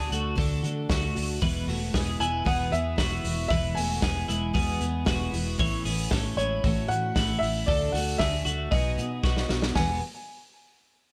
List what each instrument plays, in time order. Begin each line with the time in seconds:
Already playing: steel-string acoustic guitar D3 A3, clean electric guitar D4 G#4
0.09 fingered electric bass D2, steel-string acoustic guitar A3 D4 F#4, hi-hat pedal, open hi-hat
0.35 fingered electric bass D2, steel-string acoustic guitar D3 A3 D4 F#4, clean electric guitar A4, kick, hi-hat pedal, open hi-hat
0.62 fingered electric bass D3, steel-string acoustic guitar A3 D4 F#4, hi-hat pedal, open hi-hat
0.89 fingered electric bass D2, steel-string acoustic guitar D3 A3 D4 F#4, kick, snare, hi-hat pedal, open hi-hat
1.15 fingered electric bass D2, steel-string acoustic guitar A3 D4 F#4, hi-hat pedal, open hi-hat
1.41 fingered electric bass E1, steel-string acoustic guitar E2 B2 E3 G#3 B3 E4, clean electric guitar B4, kick, hi-hat pedal, open hi-hat
1.67 fingered electric bass E1, steel-string acoustic guitar E3 G#3 B3 E4, clean electric guitar A3 F#4, hi-hat pedal, open hi-hat
1.92 fingered electric bass E1, steel-string acoustic guitar E3 G#3 B3 E4, clean electric guitar G#4, kick, snare, hi-hat pedal, open hi-hat
2.19 fingered electric bass E1, steel-string acoustic guitar E3 G#3 B3 E4, upright piano G#5, hi-hat pedal, open hi-hat
2.44 fingered electric bass E1, steel-string acoustic guitar E2 B2 E3 G#3 B3 E4, clean electric guitar G#4, upright piano F#5, kick, hi-hat pedal, open hi-hat
2.70 fingered electric bass E2, steel-string acoustic guitar E3 G#3 B3 E4, upright piano E5, hi-hat pedal, open hi-hat
2.96 fingered electric bass E1, steel-string acoustic guitar E3 G#3 B3 E4, clean electric guitar F#4, kick, snare, hi-hat pedal, open hi-hat
3.23 fingered electric bass E1, steel-string acoustic guitar E3 G#3 B3 E4, hi-hat pedal, open hi-hat
3.48 fingered electric bass E1, steel-string acoustic guitar E2 B2 E3 G#3 B3 E4, clean electric guitar B4, upright piano E5, kick, hi-hat pedal, open hi-hat
3.75 fingered electric bass E1, steel-string acoustic guitar G#3 B3 E4, clean electric guitar A3 F#4, upright piano G#5, hi-hat pedal, open hi-hat
3.79 steel-string acoustic guitar E3
4.02 fingered electric bass E1, steel-string acoustic guitar E3 G#3 B3 E4, clean electric guitar G#4, kick, snare
4.28 fingered electric bass E1, steel-string acoustic guitar E3 G#3 B3 E4, hi-hat pedal, open hi-hat
4.53 fingered electric bass E1, steel-string acoustic guitar E2 B2 E3 G#3 B3 E4, clean electric guitar G#4, kick, hi-hat pedal, open hi-hat
4.79 fingered electric bass E2, steel-string acoustic guitar E3 G#3 B3 E4, hi-hat pedal, open hi-hat
5.05 fingered electric bass E1, steel-string acoustic guitar E3 G#3 B3 E4, clean electric guitar F#4, kick, snare, hi-hat pedal, open hi-hat
5.31 fingered electric bass E1, steel-string acoustic guitar E3 G#3 B3 E4, hi-hat pedal, open hi-hat
5.58 fingered electric bass A1, steel-string acoustic guitar A2 E3 A3 C#4 E4, clean electric guitar C#5, kick, hi-hat pedal, open hi-hat
5.83 fingered electric bass A1, steel-string acoustic guitar A3 C#4 E4, clean electric guitar B3 G#4, hi-hat pedal, open hi-hat
6.10 fingered electric bass A1, steel-string acoustic guitar E3 A3 C#4 E4, clean electric guitar A4, kick, snare, hi-hat pedal, open hi-hat
6.36 fingered electric bass A1, clean electric guitar G#3, steel-string acoustic guitar C#4 E4, upright piano C#5, hi-hat pedal, open hi-hat
6.41 steel-string acoustic guitar A3
6.64 fingered electric bass A1, steel-string acoustic guitar A2 E3 A3 C#4 E4, clean electric guitar F#4, kick, hi-hat pedal, open hi-hat
6.88 fingered electric bass A2, steel-string acoustic guitar A3 C#4 E4, upright piano F#5, hi-hat pedal, open hi-hat
7.15 fingered electric bass A1, steel-string acoustic guitar E3 A3 C#4 E4, kick, snare, hi-hat pedal, open hi-hat
7.39 fingered electric bass A1, steel-string acoustic guitar E4, upright piano E5, hi-hat pedal
7.43 steel-string acoustic guitar A3 C#4, open hi-hat
7.66 fingered electric bass D2, steel-string acoustic guitar D3 A3 D4 F#4, clean electric guitar A4, upright piano D5, kick, hi-hat pedal, open hi-hat
7.92 fingered electric bass D2, steel-string acoustic guitar D4 F#4, upright piano F#5, hi-hat pedal, open hi-hat
7.96 steel-string acoustic guitar A3
8.18 fingered electric bass D2, steel-string acoustic guitar D3 A3 D4, clean electric guitar G#4, upright piano E5, kick, snare, hi-hat pedal, open hi-hat
8.22 steel-string acoustic guitar F#4
8.45 fingered electric bass D2, steel-string acoustic guitar A3 D4 F#4, hi-hat pedal, open hi-hat
8.71 fingered electric bass B1, steel-string acoustic guitar B2 F#3 B3 D#4 F#4, clean electric guitar G#4, upright piano D#5, kick, hi-hat pedal, open hi-hat
8.96 fingered electric bass B2, steel-string acoustic guitar D#4 F#4, hi-hat pedal, open hi-hat
9.01 steel-string acoustic guitar B3
9.23 fingered electric bass B1, steel-string acoustic guitar F#3 B3 D#4 F#4, kick, snare
9.37 snare
9.49 fingered electric bass B1, steel-string acoustic guitar B3 D#4 F#4, snare
9.62 snare
9.75 fingered electric bass E1, steel-string acoustic guitar E2 B2 E3 G#3 B3, upright piano G#5, kick, snare, open hi-hat
9.79 steel-string acoustic guitar G#4